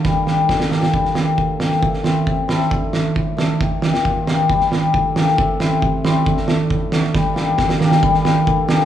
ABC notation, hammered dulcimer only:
X:1
M:2/4
L:1/16
Q:1/4=135
K:Gm
V:1 name="Hammered dulcimer"
z2 [B,DG] z3 [B,DG] z | z2 [B,DG] z3 [B,DG] z | z2 [C=EG] z3 [CEA] z | z2 [A,D^F] z3 [A,DA] z |
z2 [B,EG] z3 [B,EG] z | z2 [B,DG] z3 [B,DG] z | z2 [C=EG] z3 [CEG] z | z2 [A,D^F] z3 [A,DF] z |
z2 [B,DG] z3 [B,DG] z | z2 [B,DG] z3 [B,DG] z |]
V:2 name="Hammered dulcimer" clef=bass
G,4 D,4 | G,4 D,4 | C,4 C,4 | D,4 A,,4 |
E,4 B,,4 | G,4 D,4 | C,4 C,4 | D,4 A,,4 |
G,4 D,4 | G,4 D,4 |]